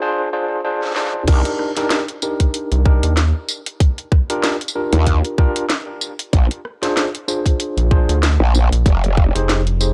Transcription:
0.02 D4 F4 G#4 C5
0.33 D4 F4 G#4 C5
0.65 D4 F4 G#4 C5
0.82 snare
0.86 snare
0.91 snare
0.96 D4 F4 G#4 C5, snare
1.02 snare
1.07 snare
1.14 mid tom
1.28 C2 D4 D#4 G4 A#4, kick, closed hi-hat, crash
1.45 closed hi-hat
1.59 cross-stick
1.77 D4 D#4 G4 A#4, snare, closed hi-hat
1.91 snare, closed hi-hat
2.09 closed hi-hat
2.22 D4 D#4 G4 A#4, tambourine
2.40 kick, closed hi-hat
2.54 closed hi-hat
2.72 C2, closed hi-hat
2.86 D4 D#4 G4 A#4, kick
3.03 D#2, closed hi-hat
3.17 snare, closed hi-hat
3.48 tambourine
3.66 closed hi-hat
3.80 kick, closed hi-hat
3.98 closed hi-hat
4.12 kick, cross-stick
4.30 D4 F4 G4 A#4, closed hi-hat
4.44 snare, closed hi-hat
4.61 closed hi-hat
4.68 tambourine
4.75 D4 F4 G4 A#4
4.93 D#2, closed hi-hat
5.07 kick, closed hi-hat
5.25 closed hi-hat
5.38 D4 F4 G4 A#4, kick
5.56 closed hi-hat
5.70 snare, closed hi-hat
6.01 tambourine
6.19 closed hi-hat
6.33 A#1, kick, closed hi-hat
6.51 closed hi-hat
6.65 cross-stick
6.83 D4 F4 G#4 C5, snare, closed hi-hat
6.97 snare, closed hi-hat
7.15 closed hi-hat
7.28 D4 F4 G#4 C5, tambourine
7.46 kick, closed hi-hat
7.60 closed hi-hat
7.77 A#1, closed hi-hat
7.91 D4 F4 G#4 C5, kick
8.09 D2, closed hi-hat
8.23 snare, closed hi-hat
8.40 A#1
8.55 tambourine
8.72 A#1, closed hi-hat
8.86 F1, kick, closed hi-hat
9.04 closed hi-hat
9.17 kick, cross-stick
9.35 F1 D#4 G4 G#4 C5, closed hi-hat
9.49 snare, closed hi-hat
9.67 closed hi-hat
9.81 D#4 G4 G#4 C5, tambourine

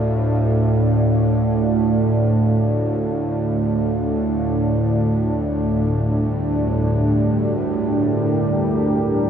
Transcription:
Already playing: D2 A2 D4 A4 D5 F5
3.75 D3
4.88 G3
5.85 G4
6.79 A#4

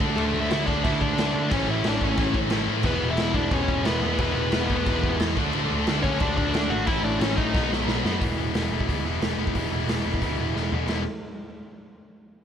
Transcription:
0.00 D2 D3 A3 D4 F#4, kick
0.16 D2 D3 A3 D4 F#4 A4, crash
0.34 D2
0.40 E4 E5
0.51 D2 D3 A3 D4 F#4, snare, crash
0.66 D2 D3 A3 D4 F#4 D5, kick
0.84 D2 D3 A3 D4 E4 F#4 E5, kick, crash
1.01 D4 D5, kick
1.17 D2 D3 A3 D4 F#4, snare, crash
1.34 D3 A3 D4 F#4
1.51 A1 A2 E3 A3 C#4 E4 C#5, kick, crash
1.67 A1 E4 E5
1.84 A1 A2 E3 A3 C#4 D4 E4, snare, crash
1.89 D5
2.01 A1 A2 E3 A3 C#4 E4, kick
2.06 C#5
2.17 A1 A2 E3 A3 C#4 E4, kick, crash
2.34 kick
2.50 A1 A2 E3 A3 C#4 E4, snare, crash
2.67 A2 E3 A3 C#4 E4
2.83 E1 E2 B2 E3 G#3 B3 E4 B4, kick, crash
3.02 E1
3.10 E4 E5
3.17 E1 E2 B2 E3 G#3 B3 E4, snare, crash
3.34 E1 E2 B2 E3 G#3 B3 D4 E4 D5, kick
3.50 E1 E2 B2 E3 G#3 B3 C#4 E4, kick, crash
3.54 C#5
3.68 kick
3.84 E1 E2 B2 E3 G#3 B3 E4 B4, snare, crash
4.01 E2 B2 E3 G#3 B3 E4
4.19 E1 E2 B2 E3 G#3 B3 E4 B4, kick, crash
4.35 E1
4.52 E1 E2 B2 E3 G#3 B3 E4, snare, crash
4.69 E1 E2 B2 E3 G#3 B3 E4, kick
4.86 E1 E2 B2 E3 G#3 B3 E4, kick, crash
5.03 kick
5.19 E2 B2 E3 G#3 B3 E4, snare, crash
5.37 D2 D3 A3 D4 F#4, kick
5.53 D2 D3 A3 D4 F#4, crash
5.71 D2
5.87 D2 D3 A3 D4 F#4, snare, crash
6.03 D2 D3 A3 C#4 D4 F#4 C#5, kick
6.20 D2 D3 A3 D4 F#4 D5, kick, crash
6.37 D4 D5, kick
6.53 D2 D3 A3 D4 F#4, snare, crash
6.70 G#1 D3 A3 D4 F#4 F#5
6.86 A1 A2 E3 A3 C#4 E4 E5, kick, crash
7.03 A1 D4 D5
7.19 A1 A2 E3 A3 C#4 E4 C#5, snare, crash
7.35 A1 A2 E3 A3 C#4 D#4 E4 D#5, kick
7.53 B1 B2 D#3 F#3 B3 D#4, kick, snare
7.73 snare
7.87 B1 B2 D#3 F#3 B3 D#4, snare
8.03 F#2 B2 D#3 F#3 B3 D#4, snare
8.20 E1 E2 B2 E3 G#3 B3 E4, kick, open hi-hat
8.38 E1 E2 B2 E3 G#3 B3 E4
8.53 E1 E2 B2 E3 G#3 B3 E4, snare, open hi-hat
8.71 E1 E2 B2 E3 G#3 B3 E4
8.81 kick
8.88 D2 E2 B2 E3 G#3 B3 E4, kick, open hi-hat
9.05 E1 E2 B2 E3 G#3 B3 E4
9.21 E1 E2 B2 E3 G#3 B3 E4, snare, open hi-hat
9.38 E1 E2 B2 E3 G#3 B3 E4
9.47 kick
9.54 E1 E2 B2 E3 G#3 B3 E4, kick, open hi-hat
9.72 E1 E2 B2 E3 G#3 B3 E4
9.88 E1 E2 B2 E3 G#3 B3 E4, snare, open hi-hat
10.05 E1 E2 B2 E3 G#3 B3 E4
10.14 kick
10.21 D2 E2 B2 E3 G#3 B3 E4, kick, open hi-hat
10.38 E1 E2 B2 E3 G#3 B3 E4
10.54 E1 E2 B2 E3 G#3 B3 E4, snare
10.71 E1 E2 B2 E3 G#3 B3 E4, floor tom
10.87 E1 E2 B2 E3 G#3 B3 E4, snare, crash

